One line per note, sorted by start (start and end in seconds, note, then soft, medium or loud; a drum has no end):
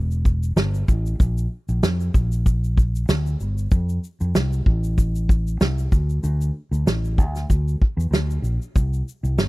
0.00 0.53 E1 medium
0.11 shaker soft
0.25 kick loud
0.25 shaker medium
0.43 shaker medium
0.56 0.82 G1 loud
0.56 snare loud
0.56 shaker medium
0.74 shaker soft
0.88 1.14 A1 loud
0.88 kick medium
0.88 shaker medium
1.06 shaker soft
1.20 1.46 A#1 loud
1.20 kick loud
1.20 shaker medium
1.38 shaker medium
1.69 1.80 A#1 loud
1.69 shaker medium
1.83 2.09 F2 loud
1.83 snare loud
1.83 shaker medium
2.00 shaker medium
2.14 3.05 A#1 medium
2.14 kick loud
2.14 shaker medium
2.32 shaker medium
2.46 kick loud
2.46 shaker medium
2.64 shaker medium
2.77 kick medium
2.77 shaker medium
2.95 shaker medium
3.09 3.35 D2 loud
3.09 snare loud
3.09 shaker medium
3.26 shaker soft
3.40 3.66 G1 medium
3.40 shaker soft
3.58 shaker soft
3.71 3.97 F2 loud
3.71 kick loud
3.71 shaker medium
3.89 shaker medium
4.04 shaker medium
4.21 4.32 F2 loud
4.21 shaker medium
4.35 4.61 C2 loud
4.35 snare loud
4.35 shaker medium
4.53 shaker medium
4.66 5.57 A1 loud
4.66 kick loud
4.84 shaker medium
4.98 kick medium
4.98 shaker medium
5.15 shaker medium
5.29 kick loud
5.29 shaker medium
5.47 shaker medium
5.61 5.86 C2 loud
5.61 snare loud
5.61 shaker medium
5.78 shaker medium
5.92 6.18 D2 loud
5.92 kick loud
5.92 shaker soft
6.10 shaker soft
6.24 6.49 D2 loud
6.24 shaker medium
6.41 shaker medium
6.71 6.83 D2 loud
6.71 shaker soft
6.86 7.18 A1 loud
6.86 snare loud
6.86 shaker medium
7.05 shaker soft
7.18 7.44 D2 medium
7.18 kick loud
7.18 shaker medium
7.36 snare soft
7.36 shaker medium
7.50 7.75 D2 loud
7.50 kick medium
7.50 shaker medium
7.68 shaker medium
7.82 kick loud
7.97 8.09 E2 loud
7.97 shaker medium
8.11 8.37 D2 loud
8.11 snare loud
8.11 shaker medium
8.30 shaker medium
8.42 8.57 A#1 medium
8.42 shaker soft
8.62 shaker soft
8.75 9.01 C2 loud
8.75 kick loud
8.75 shaker medium
8.93 shaker medium
9.08 shaker medium
9.23 9.35 C2 loud
9.23 shaker medium
9.37 9.48 G1 medium
9.37 snare loud
9.37 shaker medium